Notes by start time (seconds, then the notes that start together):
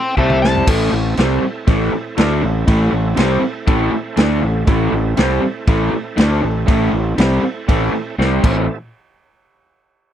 Already playing: A3 C4 E4 A4 G5 C6
0.17 C2 C3 G3 C4 G4 C5 E5 A5, kick
0.30 mid tom
0.42 A5, snare
0.55 floor tom
0.67 A1 A2 E3 A3 C4 E4 A4, kick, crash
0.92 A1 A2 E3
1.17 C2 C3 G3 C4, snare, crash
1.43 muted fingered electric bass stroke, muted overdriven electric guitar stroke
1.67 A1 A2 E3 A3, kick, crash
1.93 muted overdriven electric guitar stroke, muted fingered electric bass stroke
2.17 D2 D3 A3 D4, snare, crash
2.43 A1 A2 E3
2.67 A1 A2 E3 A3, kick, crash
2.91 A1 A2 E3
3.17 C2 C3 G3 C4, snare, crash
3.42 muted overdriven electric guitar stroke, muted fingered electric bass stroke
3.67 A1 A2 E3 A3, kick, crash
3.92 muted overdriven electric guitar stroke, muted fingered electric bass stroke
4.17 D2 D3 A3 D4, snare, crash
4.42 A1 A2 E3
4.67 A1 A2 E3 A3 C4 E4 A4, kick, crash
4.92 A1 A2 E3
5.17 C2 C3 G3 C4, snare, crash
5.42 muted overdriven electric guitar stroke, muted fingered electric bass stroke
5.67 A1 A2 E3 A3, kick, crash
5.92 muted overdriven electric guitar stroke, muted fingered electric bass stroke
6.17 D2 D3 A3 D4, snare, crash
6.42 A1 A2 E3
6.67 A1 A2 E3 A3, kick, crash
6.93 A1 A2 E3
7.18 C2 C3 G3 C4, snare, crash
7.43 muted fingered electric bass stroke, muted overdriven electric guitar stroke
7.68 A1 A2 E3 A3, kick, crash
7.93 muted fingered electric bass stroke, muted overdriven electric guitar stroke
8.18 C2 C3 G3 C4 G4 C5, snare
8.43 A1 A2 E3 A3 C4 E4 A4, kick, crash